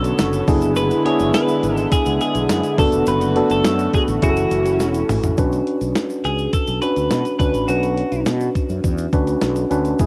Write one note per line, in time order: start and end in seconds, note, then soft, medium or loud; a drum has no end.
0.00 0.11 B1 medium
0.00 0.46 D3 medium
0.00 4.19 B3 medium
0.00 0.49 C#4 medium
0.00 0.48 D4 medium
0.00 0.44 F#4 medium
0.00 0.49 F#4 medium
0.00 0.76 A4 loud
0.00 0.50 B4 medium
0.00 0.44 C#5 medium
0.04 closed hi-hat medium
0.04 shaker soft
0.19 0.41 F#1 medium
0.19 snare loud
0.19 closed hi-hat medium
0.19 tambourine medium
0.19 shaker medium
0.33 closed hi-hat medium
0.33 shaker medium
0.48 0.91 F#1 loud
0.48 4.19 D3 medium
0.48 2.76 G#3 medium
0.48 0.97 B3 medium
0.48 0.97 D4 medium
0.48 2.76 E4 medium
0.48 0.97 E4 medium
0.48 0.98 G#4 medium
0.48 kick loud
0.48 open hi-hat medium
0.48 shaker medium
0.62 closed hi-hat medium
0.62 shaker medium
0.76 1.05 B4 loud
0.76 closed hi-hat medium
0.76 shaker medium
0.91 closed hi-hat medium
0.91 shaker soft
1.05 2.04 B3 medium
1.05 2.04 D4 medium
1.05 2.04 E4 medium
1.05 2.04 G#4 medium
1.05 1.34 C#5 loud
1.05 closed hi-hat medium
1.19 1.31 F#1 loud
1.19 closed hi-hat medium
1.19 shaker soft
1.34 1.76 B4 loud
1.34 snare loud
1.34 closed hi-hat medium
1.34 tambourine medium
1.34 shaker medium
1.48 closed hi-hat soft
1.48 shaker medium
1.63 1.85 G#1 loud
1.63 closed hi-hat medium
1.63 shaker soft
1.76 1.88 A4 loud
1.76 closed hi-hat soft
1.76 shaker medium
1.92 2.20 G#4 loud
1.92 kick medium
1.92 closed hi-hat loud
1.92 shaker medium
2.06 2.17 C#2 medium
2.06 closed hi-hat medium
2.06 shaker soft
2.21 2.79 G#4 loud
2.21 closed hi-hat medium
2.21 shaker soft
2.35 2.46 B1 medium
2.35 closed hi-hat medium
2.35 shaker medium
2.49 2.60 F#2 loud
2.49 snare loud
2.49 closed hi-hat loud
2.49 tambourine medium
2.49 shaker medium
2.63 closed hi-hat medium
2.63 shaker medium
2.78 2.89 F#1 medium
2.78 5.36 A3 medium
2.78 3.28 B3 medium
2.78 3.28 D4 medium
2.78 5.35 F#4 medium
2.78 3.28 F#4 medium
2.78 3.06 A4 medium
2.78 3.28 A4 medium
2.78 kick loud
2.78 open hi-hat medium
2.78 shaker medium
2.92 3.04 E1 medium
2.92 closed hi-hat medium
2.92 shaker medium
3.06 3.40 F#1 loud
3.06 3.51 B4 loud
3.06 closed hi-hat loud
3.06 shaker medium
3.21 closed hi-hat medium
3.21 shaker soft
3.36 4.23 B3 medium
3.36 4.23 D4 medium
3.36 4.22 F#4 medium
3.36 4.23 A4 medium
3.36 closed hi-hat medium
3.50 3.61 F#1 medium
3.50 3.91 A4 medium
3.50 closed hi-hat medium
3.50 shaker soft
3.64 3.86 F#2 loud
3.64 snare loud
3.64 closed hi-hat medium
3.64 tambourine medium
3.64 shaker medium
3.79 closed hi-hat soft
3.79 shaker soft
3.93 4.02 G#4 medium
3.93 kick medium
3.93 closed hi-hat medium
3.93 shaker soft
4.08 4.19 A1 loud
4.08 closed hi-hat soft
4.08 shaker medium
4.22 4.44 F#1 loud
4.22 5.37 E3 medium
4.22 5.21 C#4 medium
4.22 5.37 C#4 medium
4.22 5.21 E4 medium
4.22 5.21 F#4 medium
4.22 5.06 F#4 medium
4.22 4.29 G#4 medium
4.22 kick loud
4.22 closed hi-hat loud
4.22 shaker medium
4.30 5.25 A4 medium
4.37 closed hi-hat medium
4.37 shaker soft
4.51 4.80 F#1 loud
4.51 closed hi-hat medium
4.51 shaker soft
4.66 closed hi-hat medium
4.66 shaker soft
4.80 5.02 E1 medium
4.80 snare medium
4.80 closed hi-hat loud
4.80 shaker medium
4.94 closed hi-hat medium
4.94 shaker soft
5.09 5.31 A1 medium
5.09 mid tom loud
5.09 open hi-hat medium
5.09 shaker medium
5.23 closed hi-hat medium
5.23 floor tom medium
5.23 shaker medium
5.37 5.60 B1 medium
5.37 6.36 C#4 medium
5.37 6.37 D4 medium
5.37 6.37 F#4 medium
5.37 6.37 B4 medium
5.37 kick medium
5.37 closed hi-hat medium
5.37 shaker medium
5.52 closed hi-hat soft
5.52 shaker soft
5.67 closed hi-hat medium
5.81 5.92 B1 medium
5.81 closed hi-hat soft
5.81 shaker soft
5.95 snare loud
5.95 closed hi-hat medium
5.95 shaker medium
6.10 closed hi-hat soft
6.10 shaker soft
6.24 6.46 C#2 medium
6.24 6.53 G#4 medium
6.24 closed hi-hat medium
6.24 shaker soft
6.38 closed hi-hat soft
6.38 shaker soft
6.53 6.80 A4 medium
6.53 kick medium
6.53 closed hi-hat medium
6.53 shaker medium
6.67 6.79 B1 medium
6.67 closed hi-hat medium
6.67 shaker soft
6.82 7.31 C#4 medium
6.82 7.31 D4 medium
6.82 7.32 F#4 medium
6.82 7.36 B4 medium
6.82 7.32 B4 medium
6.82 closed hi-hat medium
6.82 shaker soft
6.96 7.07 D2 medium
6.96 closed hi-hat medium
6.96 shaker soft
7.11 7.22 B2 medium
7.11 snare medium
7.11 closed hi-hat medium
7.11 shaker medium
7.25 closed hi-hat medium
7.25 shaker soft
7.39 7.51 D2 medium
7.39 7.64 C#4 medium
7.39 7.65 D4 medium
7.39 7.65 F#4 medium
7.39 7.69 B4 medium
7.39 7.65 B4 medium
7.39 kick medium
7.39 closed hi-hat medium
7.39 shaker soft
7.54 7.65 A1 medium
7.54 closed hi-hat soft
7.54 shaker soft
7.68 8.01 B1 medium
7.68 8.67 C#4 medium
7.68 8.67 D4 medium
7.68 8.22 F#4 medium
7.68 8.68 F#4 medium
7.68 8.68 B4 medium
7.68 closed hi-hat medium
7.68 shaker medium
7.83 closed hi-hat soft
7.83 shaker soft
7.97 closed hi-hat medium
8.12 8.23 B1 medium
8.12 closed hi-hat soft
8.12 shaker soft
8.26 8.48 B2 medium
8.26 snare loud
8.26 closed hi-hat medium
8.26 shaker medium
8.40 closed hi-hat soft
8.40 shaker soft
8.55 kick medium
8.55 closed hi-hat medium
8.55 shaker soft
8.69 8.80 F#2 medium
8.69 closed hi-hat soft
8.69 shaker soft
8.84 9.06 E2 medium
8.84 kick medium
8.84 closed hi-hat medium
8.84 shaker medium
8.98 closed hi-hat medium
8.98 shaker soft
9.13 9.35 D2 medium
9.13 9.62 C#4 medium
9.13 9.62 D4 medium
9.13 9.62 F#4 medium
9.13 9.63 B4 medium
9.13 kick medium
9.13 closed hi-hat medium
9.13 shaker soft
9.27 closed hi-hat medium
9.27 shaker soft
9.41 9.64 B1 medium
9.41 snare loud
9.41 closed hi-hat medium
9.41 shaker medium
9.56 closed hi-hat soft
9.56 shaker soft
9.70 9.92 D2 medium
9.70 9.95 C#4 medium
9.70 9.95 D4 medium
9.70 9.96 F#4 medium
9.70 9.96 B4 medium
9.70 closed hi-hat medium
9.70 shaker soft
9.85 closed hi-hat medium
9.85 shaker soft
9.99 10.06 E1 medium
9.99 10.06 G#3 medium
9.99 10.06 B3 medium
9.99 10.06 E4 medium
9.99 10.06 G#4 medium
9.99 kick medium
9.99 closed hi-hat medium
9.99 shaker medium